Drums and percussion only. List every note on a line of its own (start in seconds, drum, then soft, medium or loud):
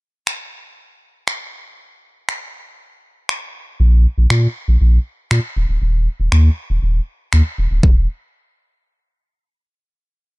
0.27 finger snap loud
1.28 finger snap loud
2.29 finger snap loud
3.29 finger snap loud
4.30 finger snap medium
5.31 finger snap loud
6.32 finger snap medium
7.33 finger snap loud
7.83 kick loud